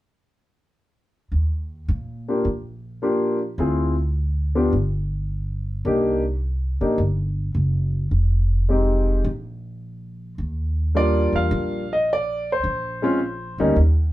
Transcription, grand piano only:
0, 0, Header, 1, 2, 480
1, 0, Start_track
1, 0, Key_signature, -3, "major"
1, 0, Tempo, 565504
1, 1120, Time_signature, 4, 2, 24, 8
1, 11992, End_track
2, 0, Start_track
2, 0, Title_t, "Grand piano"
2, 0, Program_c, 0, 0
2, 1938, Note_on_c, 0, 58, 45
2, 1940, Note_on_c, 0, 62, 40
2, 1943, Note_on_c, 0, 65, 35
2, 1947, Note_on_c, 0, 67, 45
2, 2072, Note_off_c, 0, 58, 0
2, 2073, Note_off_c, 0, 62, 0
2, 2074, Note_off_c, 0, 65, 0
2, 2076, Note_off_c, 0, 67, 0
2, 2563, Note_on_c, 0, 58, 46
2, 2569, Note_on_c, 0, 62, 48
2, 2570, Note_on_c, 0, 65, 48
2, 2574, Note_on_c, 0, 67, 54
2, 2863, Note_off_c, 0, 58, 0
2, 2866, Note_off_c, 0, 62, 0
2, 2866, Note_off_c, 0, 65, 0
2, 2869, Note_off_c, 0, 67, 0
2, 3046, Note_on_c, 0, 60, 51
2, 3049, Note_on_c, 0, 64, 41
2, 3051, Note_on_c, 0, 65, 49
2, 3056, Note_on_c, 0, 68, 50
2, 3345, Note_off_c, 0, 60, 0
2, 3347, Note_off_c, 0, 64, 0
2, 3348, Note_off_c, 0, 65, 0
2, 3350, Note_off_c, 0, 68, 0
2, 3865, Note_on_c, 0, 59, 46
2, 3866, Note_on_c, 0, 62, 47
2, 3867, Note_on_c, 0, 65, 46
2, 3871, Note_on_c, 0, 67, 50
2, 3999, Note_off_c, 0, 59, 0
2, 3999, Note_off_c, 0, 62, 0
2, 3999, Note_off_c, 0, 65, 0
2, 4002, Note_off_c, 0, 67, 0
2, 4967, Note_on_c, 0, 58, 49
2, 4972, Note_on_c, 0, 62, 44
2, 4975, Note_on_c, 0, 63, 43
2, 4980, Note_on_c, 0, 67, 57
2, 5267, Note_off_c, 0, 58, 0
2, 5270, Note_off_c, 0, 62, 0
2, 5271, Note_off_c, 0, 63, 0
2, 5274, Note_off_c, 0, 67, 0
2, 5779, Note_on_c, 0, 58, 48
2, 5781, Note_on_c, 0, 62, 40
2, 5784, Note_on_c, 0, 67, 47
2, 5790, Note_on_c, 0, 63, 43
2, 5917, Note_off_c, 0, 58, 0
2, 5918, Note_off_c, 0, 62, 0
2, 5920, Note_off_c, 0, 67, 0
2, 5922, Note_off_c, 0, 63, 0
2, 7374, Note_on_c, 0, 56, 48
2, 7380, Note_on_c, 0, 60, 44
2, 7382, Note_on_c, 0, 63, 43
2, 7387, Note_on_c, 0, 67, 47
2, 7853, Note_off_c, 0, 56, 0
2, 7856, Note_off_c, 0, 60, 0
2, 7857, Note_off_c, 0, 63, 0
2, 7860, Note_off_c, 0, 67, 0
2, 9291, Note_on_c, 0, 58, 46
2, 9294, Note_on_c, 0, 55, 51
2, 9298, Note_on_c, 0, 62, 45
2, 9304, Note_on_c, 0, 65, 60
2, 9309, Note_on_c, 0, 74, 92
2, 9637, Note_off_c, 0, 74, 0
2, 9639, Note_on_c, 0, 77, 80
2, 10030, Note_off_c, 0, 58, 0
2, 10032, Note_off_c, 0, 55, 0
2, 10034, Note_off_c, 0, 62, 0
2, 10037, Note_off_c, 0, 65, 0
2, 10120, Note_off_c, 0, 77, 0
2, 10124, Note_on_c, 0, 75, 73
2, 10263, Note_off_c, 0, 75, 0
2, 10295, Note_on_c, 0, 74, 88
2, 10607, Note_off_c, 0, 74, 0
2, 10630, Note_on_c, 0, 72, 79
2, 11054, Note_on_c, 0, 56, 60
2, 11060, Note_on_c, 0, 61, 61
2, 11062, Note_on_c, 0, 60, 55
2, 11067, Note_on_c, 0, 65, 69
2, 11186, Note_off_c, 0, 56, 0
2, 11189, Note_off_c, 0, 61, 0
2, 11190, Note_off_c, 0, 60, 0
2, 11193, Note_off_c, 0, 65, 0
2, 11521, Note_off_c, 0, 72, 0
2, 11540, Note_on_c, 0, 55, 64
2, 11540, Note_on_c, 0, 58, 53
2, 11542, Note_on_c, 0, 61, 54
2, 11543, Note_on_c, 0, 63, 70
2, 11667, Note_off_c, 0, 58, 0
2, 11668, Note_off_c, 0, 55, 0
2, 11669, Note_off_c, 0, 61, 0
2, 11669, Note_off_c, 0, 63, 0
2, 11992, End_track
0, 0, End_of_file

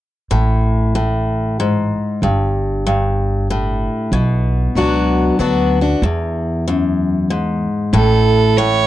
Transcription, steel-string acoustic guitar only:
0, 0, Header, 1, 2, 480
1, 0, Start_track
1, 0, Key_signature, 3, "major"
1, 0, Tempo, 634249
1, 239, Time_signature, 3, 2, 24, 8
1, 6712, End_track
2, 0, Start_track
2, 0, Title_t, "Steel-string acoustic guitar"
2, 0, Program_c, 0, 25
2, 233, Note_on_c, 0, 45, 70
2, 710, Note_off_c, 0, 45, 0
2, 719, Note_on_c, 0, 45, 73
2, 1182, Note_off_c, 0, 45, 0
2, 1209, Note_on_c, 0, 44, 74
2, 1667, Note_off_c, 0, 44, 0
2, 1687, Note_on_c, 0, 43, 71
2, 2159, Note_off_c, 0, 43, 0
2, 2168, Note_on_c, 0, 43, 75
2, 2627, Note_off_c, 0, 43, 0
2, 2652, Note_on_c, 0, 45, 74
2, 3109, Note_off_c, 0, 45, 0
2, 3123, Note_on_c, 0, 47, 74
2, 3605, Note_on_c, 0, 54, 54
2, 3611, Note_on_c, 0, 59, 50
2, 3613, Note_on_c, 0, 66, 59
2, 3615, Note_on_c, 0, 62, 58
2, 4047, Note_off_c, 0, 47, 0
2, 4065, Note_off_c, 0, 54, 0
2, 4068, Note_off_c, 0, 59, 0
2, 4069, Note_off_c, 0, 66, 0
2, 4070, Note_off_c, 0, 62, 0
2, 4079, Note_on_c, 0, 54, 52
2, 4085, Note_on_c, 0, 59, 52
2, 4090, Note_on_c, 0, 62, 58
2, 4093, Note_on_c, 0, 66, 58
2, 4375, Note_off_c, 0, 54, 0
2, 4378, Note_off_c, 0, 59, 0
2, 4381, Note_off_c, 0, 62, 0
2, 4382, Note_off_c, 0, 66, 0
2, 4399, Note_on_c, 0, 66, 52
2, 4405, Note_on_c, 0, 62, 41
2, 4558, Note_off_c, 0, 66, 0
2, 4561, Note_off_c, 0, 62, 0
2, 4567, Note_on_c, 0, 40, 73
2, 5049, Note_off_c, 0, 40, 0
2, 5052, Note_on_c, 0, 42, 75
2, 5509, Note_off_c, 0, 42, 0
2, 5527, Note_on_c, 0, 44, 75
2, 5986, Note_off_c, 0, 44, 0
2, 6005, Note_on_c, 0, 45, 80
2, 6485, Note_off_c, 0, 45, 0
2, 6494, Note_on_c, 0, 45, 83
2, 6712, Note_off_c, 0, 45, 0
2, 6712, End_track
0, 0, End_of_file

